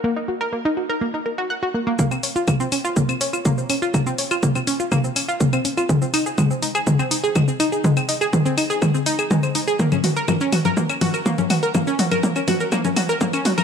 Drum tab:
HH |----------------|--o---o---o---o-|--o---o---o---o-|--o---o---o---o-|
SH |----------------|xxxxxxxxxxxxxxxx|xxxxxxxxxxxxxxxx|xxxxxxxxxxxxxxxx|
CL |----------------|-x--x-x--x-x--x-|x--x-x--x-x--x-x|--x-x--x-x--x-x-|
T2 |----------------|o---o---o---o---|o---o---o---o---|o---o---o---o---|
CG |----------------|----------------|----------------|----------------|
BD |----------------|o---o---o---o---|o---o---o---o---|o---o---o---o---|

HH |--o---o---o---o-|--o---o---o---o-|--o---o---o---o-|
SH |xxxxxxxxxxxxxxxx|xxxxxxxxxxxxxxxx|xxxxxxxxxxxxxxxx|
CL |-x-x--x-x--x-x--|-x--x-x--x-x--x-|x--x-x--x-x--x-x|
T2 |o---o---o---o---|o-o-o-o-o-o-o-o-|o-o-o-o-o-o-o-o-|
CG |----------------|-O--O--O--O--O--|O--O--O--O--O--O|
BD |o---o---o---o---|o---o---o---o---|o---o---o---o---|